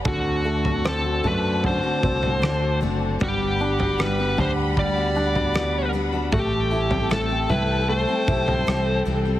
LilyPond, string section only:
\new Staff \with { instrumentName = "String section" } { \time 4/4 \key g \major \tempo 4 = 76 <fis' d'' a''>1 | <g fis'' b''>1 | <a' g'' a''>1 | }